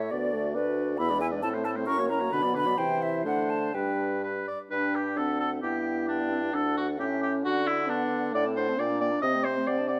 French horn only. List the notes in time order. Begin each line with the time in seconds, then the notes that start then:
Already playing: A3
0.11 B3
0.33 A3
0.55 D4
0.99 B3
1.11 G#3
1.22 B3
1.33 G#3
1.43 C4
1.54 A3
1.65 C4
1.76 A3
1.87 C#4
1.99 A#3
2.10 C#4
2.21 A#3
2.32 D3
2.43 F#3
2.55 D3
2.65 F#3
2.77 E3
3.25 A3
3.74 G3
4.71 D4
5.63 E4
6.53 D4
6.99 C#4
7.44 D4
7.88 B3
8.32 A3
8.78 D4
9.23 C4